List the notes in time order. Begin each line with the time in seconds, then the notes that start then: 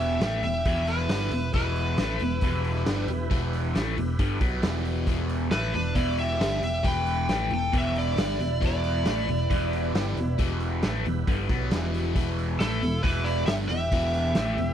Already playing: E1 E2 B2 E3 B3 E4 G4 B4 E5
0.21 A1 A2 E3 A3, snare, open hi-hat
0.42 E1 E2 B2 G4 E5, open hi-hat
0.65 E1 E2 B2 E3, kick, open hi-hat
0.87 E4 B4, open hi-hat
0.98 snare
1.09 G1 G2 D3 G3, snare, open hi-hat
1.31 E1 E2 B2, open hi-hat
1.52 E1 E2 B2 E4 G4 B4, kick, open hi-hat
1.56 E3 E4
1.76 open hi-hat
1.98 A1 A2 E3 A3, snare, open hi-hat
2.19 E1 E2 B2, open hi-hat
2.41 E1 E2 B2 E3, kick, open hi-hat
2.64 open hi-hat
2.76 snare
2.86 G1 G2 D3 G3, snare, open hi-hat
3.08 E1 E2 B2, open hi-hat
3.30 E1 E2 B2 E3, kick, open hi-hat
3.53 open hi-hat
3.74 A1 A2 E3 A3, snare, open hi-hat
3.97 E1 E2 B2, open hi-hat
4.19 G1 G2 D3 G3, kick, open hi-hat
4.41 B1 B2 F#3 B3, kick, open hi-hat
4.62 E1 E2 B2 E3, snare, open hi-hat
4.85 open hi-hat
5.07 E1 E2 B2 E3 F4 G#4 C5, kick, open hi-hat
5.20 E4 G4 B4
5.29 open hi-hat
5.51 A1 A2 E3 A3 E4 B4, snare, open hi-hat
5.74 E1 E2 B2 D4 B4, open hi-hat
5.95 E1 E2 B2 E3 E4 D5, kick, open hi-hat
6.18 G4 E5, open hi-hat
6.29 snare
6.39 G1 G2 D3 G3, snare, open hi-hat
6.61 E1 E2 B2 G4 E5, open hi-hat
6.83 E1 E2 B2 E3 G5, kick, open hi-hat
6.87 B4
7.06 open hi-hat
7.28 A1 A2 E3 A3, snare, open hi-hat
7.51 E1 E2 B2 G5, open hi-hat
7.55 A4
7.72 E1 E2 B2 E3, kick, open hi-hat
7.77 G4 E5
7.96 E4 D5, open hi-hat
8.16 G1 G2 D3 G3, snare, open hi-hat
8.39 E1 E2 B2, open hi-hat
8.60 E1 E2 B2 E3 B3 E4 G4 B4, kick, open hi-hat
8.65 E4 D5
8.84 open hi-hat
9.05 A1 A2 E3 A3, snare, open hi-hat
9.27 E1 E2 B2, open hi-hat
9.50 E1 E2 B2 E3, kick, open hi-hat
9.73 open hi-hat
9.94 G1 G2 D3 G3, snare, open hi-hat
10.17 E1 E2 B2, open hi-hat
10.38 E1 E2 B2 E3, kick, open hi-hat
10.60 open hi-hat
10.83 A1 A2 E3 A3, snare, open hi-hat
11.05 E1 E2 B2, open hi-hat
11.27 G1 G2 D3 G3, kick, open hi-hat
11.49 B1 B2 F#3 B3, kick, open hi-hat
11.71 E1 E2 B2 E3, snare, open hi-hat
11.94 open hi-hat
12.15 E1 E2 B2 E3 E4 G4 B4, kick, open hi-hat
12.39 open hi-hat
12.60 A1 A2 E3 A3 E4 A4, snare, open hi-hat
12.81 E1 E2 B2, open hi-hat
13.03 E1 E2 B2 E3 E4 B4, kick, open hi-hat
13.24 E4 D5, open hi-hat
13.46 G1 G2 D3 G3 G4 E5, snare, open hi-hat
13.69 E1 E2 B2 G4 E5, open hi-hat
13.91 E1 E2 B2 E3, kick, open hi-hat
14.14 open hi-hat
14.35 A1 A2 E3 A3, snare, open hi-hat
14.57 E1 E2 B2, open hi-hat